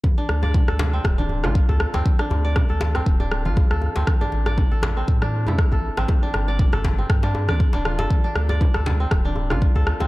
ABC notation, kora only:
X:1
M:4/4
L:1/16
Q:"Swing 16ths" 1/4=119
K:Dm
V:1 name="Kora"
z D z d z A z C z D z F z A z C | z D z d z A z C z D z F z A z C | z D z d z A z C z D z E z A z C | z D z d z A z C z D z d z D F A |
z D z d z A z C z D z F z A z C |]